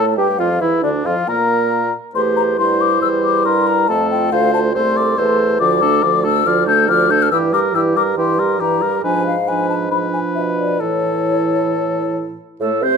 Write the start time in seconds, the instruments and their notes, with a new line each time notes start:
Already playing: bassoon A2, french horn A3, clarinet A4, flute A5
0.17 bassoon G2, french horn G3, oboe G4, clarinet G4, flute G5
0.39 bassoon F2, french horn F3, clarinet F4, oboe F4, flute F5
0.60 bassoon E2, french horn E3, clarinet E4, oboe E4, flute E5
0.82 bassoon D2, french horn D3, clarinet D4, oboe D4, flute D5
1.05 bassoon F2, french horn F3, clarinet F4, oboe F4, flute F5
1.27 bassoon A#2, french horn A#3, clarinet A#4, oboe A#4, flute A#5
2.14 bassoon E2, french horn A3, clarinet G4, oboe C5, flute C6
2.37 flute A#5
2.58 bassoon G2, french horn G3, clarinet E4, oboe C5, flute C6
2.81 flute D6
3.02 bassoon E2, french horn G3, flute E6
3.24 flute D6
3.45 bassoon G2, oboe A#4, flute C6
3.67 flute A#5
3.88 bassoon F2, french horn A3, clarinet F4, oboe A4, flute A5
4.11 flute G5
4.32 bassoon D2, clarinet F4, oboe C5, flute F5
4.54 flute A5
4.75 bassoon C2, french horn A3, clarinet A4, oboe C5, flute C6
4.97 oboe D5
5.18 bassoon E2, french horn A3, clarinet A4, oboe C5
5.60 bassoon D2, french horn F3, clarinet F4, oboe D5, flute D6
5.82 french horn A3, clarinet D4, oboe A4
6.03 bassoon D2, french horn F3, clarinet F4, oboe D5
6.24 french horn A3, clarinet D4, oboe A4, flute E6
6.46 bassoon D2, french horn F3, clarinet F4, oboe D5, flute F6
6.67 french horn A3, clarinet D4, oboe A4, flute G6
6.88 bassoon D2, french horn F3, clarinet F4, oboe D5, flute F6
7.10 french horn A3, clarinet D4, oboe A4, flute G6
7.22 flute F6
7.31 bassoon G2, french horn E3, clarinet E4, oboe G4, flute E6
7.52 french horn G3, clarinet G4, oboe A#4, flute D6
7.74 bassoon G2, french horn E3, clarinet E4, oboe G4, flute E6
7.95 french horn G3, clarinet G4, oboe A#4, flute D6
8.17 bassoon G2, french horn E3, clarinet E4, oboe G4, flute C6
8.39 french horn G3, clarinet G4, oboe A#4
8.60 bassoon G2, french horn E3, clarinet E4, oboe G4, flute A#5
8.82 french horn G3, clarinet G4, oboe A#4
9.03 bassoon G#2, french horn F3, clarinet D4, oboe B4, flute G#5
9.26 flute F5
9.47 french horn F3, clarinet D4, oboe B4, flute G#5
9.70 flute A5
9.91 french horn F3, clarinet D4, oboe B4, flute B5
10.14 flute G#5
10.35 bassoon B2, flute E5
10.58 flute D5
10.80 bassoon A2, french horn E3, clarinet E4, oboe A4, flute C#5
12.60 bassoon A2, french horn A3, flute A4, clarinet A4
12.82 bassoon C3, french horn C4, flute C5, clarinet C5